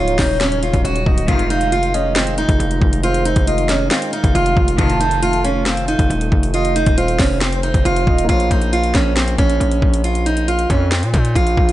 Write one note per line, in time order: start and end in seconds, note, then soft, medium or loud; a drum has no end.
0.00 0.17 C#1 loud
0.00 1.25 C#3 medium
0.00 1.25 F#3 medium
0.00 1.25 D#4 medium
0.00 0.17 F4 medium
0.00 1.02 C#5 medium
0.08 closed hi-hat medium
0.19 0.71 D#1 loud
0.19 0.39 D#4 medium
0.19 kick medium
0.19 snare loud
0.19 open hi-hat medium
0.41 0.61 C#4 loud
0.41 snare loud
0.41 closed hi-hat medium
0.52 closed hi-hat medium
0.63 0.83 F4 medium
0.63 closed hi-hat medium
0.74 0.84 D#1 loud
0.74 kick medium
0.74 closed hi-hat medium
0.84 1.05 D#1 loud
0.84 1.26 F#4 medium
0.84 closed hi-hat medium
0.96 closed hi-hat medium
1.06 1.27 C#1 loud
1.06 1.27 D#5 medium
1.06 kick loud
1.18 closed hi-hat medium
1.28 2.45 F1 loud
1.28 1.59 G#2 loud
1.28 1.59 C3 medium
1.28 1.59 D#3 loud
1.28 8.25 D#3 medium
1.28 4.75 G#3 medium
1.28 3.02 F4 medium
1.28 1.49 F4 loud
1.28 1.90 F5 loud
1.28 kick loud
1.28 closed hi-hat medium
1.39 closed hi-hat medium
1.50 1.71 D#4 medium
1.50 closed hi-hat medium
1.61 closed hi-hat medium
1.72 1.92 F4 medium
1.72 closed hi-hat medium
1.83 closed hi-hat medium
1.94 2.14 C#4 medium
1.94 2.56 D#5 medium
1.94 closed hi-hat medium
2.16 2.36 C4 medium
2.16 snare loud
2.16 closed hi-hat medium
2.27 closed hi-hat medium
2.38 3.00 D#4 medium
2.38 closed hi-hat medium
2.49 2.59 F1 loud
2.49 kick medium
2.49 closed hi-hat medium
2.60 2.81 F1 loud
2.60 closed hi-hat medium
2.71 closed hi-hat medium
2.82 3.34 F1 loud
2.82 kick loud
2.93 closed hi-hat medium
3.03 4.77 D#4 medium
3.03 3.24 F4 medium
3.03 3.45 C5 loud
3.03 closed hi-hat medium
3.14 closed hi-hat medium
3.25 3.46 D#4 medium
3.25 closed hi-hat medium
3.36 3.89 F1 loud
3.36 kick loud
3.36 closed hi-hat medium
3.47 3.68 F4 medium
3.47 3.88 D#5 medium
3.47 closed hi-hat medium
3.58 closed hi-hat medium
3.69 3.90 C#4 medium
3.69 snare loud
3.69 closed hi-hat medium
3.91 4.11 C4 medium
3.91 4.75 F5 loud
3.91 snare loud
3.91 closed hi-hat medium
4.02 closed hi-hat medium
4.13 4.33 D#4 medium
4.13 closed hi-hat medium
4.24 4.34 F1 loud
4.24 kick medium
4.24 closed hi-hat medium
4.35 4.56 F1 loud
4.35 4.76 F4 medium
4.35 closed hi-hat medium
4.46 closed hi-hat medium
4.57 4.78 F1 loud
4.57 kick loud
4.68 closed hi-hat medium
4.79 5.95 F1 loud
4.79 5.10 A2 loud
4.79 5.10 C3 loud
4.79 5.10 D#3 loud
4.79 8.26 A3 medium
4.79 8.25 F4 medium
4.79 4.99 F4 loud
4.79 5.40 A5 loud
4.79 kick loud
4.79 closed hi-hat medium
4.90 closed hi-hat medium
5.00 5.21 D#4 medium
5.00 closed hi-hat medium
5.11 closed hi-hat medium
5.23 5.43 F4 medium
5.23 closed hi-hat medium
5.33 closed hi-hat medium
5.44 5.65 C#4 medium
5.44 6.06 F5 medium
5.44 closed hi-hat medium
5.66 5.87 C4 medium
5.66 snare loud
5.66 closed hi-hat medium
5.77 closed hi-hat medium
5.88 6.50 D#4 medium
5.88 closed hi-hat medium
5.99 6.10 F1 loud
5.99 kick medium
5.99 closed hi-hat medium
6.10 6.31 D#1 loud
6.10 closed hi-hat medium
6.21 closed hi-hat medium
6.32 6.84 F1 loud
6.32 kick loud
6.43 closed hi-hat medium
6.54 6.74 F4 medium
6.54 6.95 D#5 loud
6.54 closed hi-hat medium
6.65 closed hi-hat medium
6.76 6.96 D#4 medium
6.76 closed hi-hat medium
6.86 7.18 D#1 loud
6.86 kick loud
6.86 closed hi-hat medium
6.98 7.18 F4 medium
6.98 8.03 C5 medium
6.98 closed hi-hat medium
7.08 closed hi-hat medium
7.19 7.72 F1 loud
7.19 7.40 C#4 medium
7.19 kick medium
7.19 snare loud
7.19 open hi-hat medium
7.41 7.62 C4 medium
7.41 snare loud
7.41 closed hi-hat medium
7.52 closed hi-hat medium
7.63 7.84 D#4 medium
7.63 closed hi-hat medium
7.74 7.85 F1 loud
7.74 kick loud
7.74 closed hi-hat medium
7.85 8.06 F1 loud
7.85 8.26 F4 medium
7.85 closed hi-hat medium
7.96 closed hi-hat medium
8.07 8.28 D#1 loud
8.07 8.28 D#5 medium
8.07 kick loud
8.18 closed hi-hat medium
8.24 11.72 A#3 medium
8.24 11.72 F4 medium
8.29 8.50 A#1 loud
8.29 8.49 F4 medium
8.29 11.72 C5 medium
8.29 11.72 C#5 medium
8.29 kick loud
8.29 closed hi-hat medium
8.40 closed hi-hat medium
8.51 8.93 A#1 loud
8.51 8.71 D#4 medium
8.51 kick loud
8.51 closed hi-hat medium
8.62 closed hi-hat medium
8.73 8.93 F4 medium
8.73 closed hi-hat medium
8.84 closed hi-hat medium
8.95 9.37 A#1 loud
8.95 9.15 C#4 medium
8.95 kick medium
8.95 snare medium
8.95 closed hi-hat medium
9.16 9.37 C4 medium
9.16 snare loud
9.16 closed hi-hat medium
9.28 closed hi-hat medium
9.38 9.59 A#1 loud
9.38 10.00 C#4 medium
9.38 kick loud
9.38 closed hi-hat medium
9.50 closed hi-hat medium
9.60 9.81 A#1 loud
9.60 closed hi-hat medium
9.71 closed hi-hat medium
9.82 10.66 A#1 loud
9.82 kick loud
9.94 closed hi-hat medium
10.04 10.25 F4 medium
10.04 closed hi-hat medium
10.15 closed hi-hat medium
10.26 10.46 D#4 medium
10.26 closed hi-hat medium
10.37 closed hi-hat medium
10.48 10.68 F4 medium
10.48 closed hi-hat medium
10.59 closed hi-hat medium
10.70 11.04 F2 loud
10.70 10.90 C#4 medium
10.70 kick medium
10.70 closed hi-hat medium
10.92 11.12 C4 medium
10.92 snare loud
10.92 closed hi-hat medium
11.03 11.13 A#2 loud
11.03 closed hi-hat medium
11.14 11.35 A#2 loud
11.14 11.34 D#4 medium
11.14 kick loud
11.14 closed hi-hat medium
11.25 closed hi-hat medium
11.35 11.57 A#1 loud
11.35 11.72 F4 medium
11.35 kick loud
11.35 closed hi-hat medium
11.47 closed hi-hat medium
11.57 11.72 A#1 loud
11.57 kick loud
11.69 closed hi-hat medium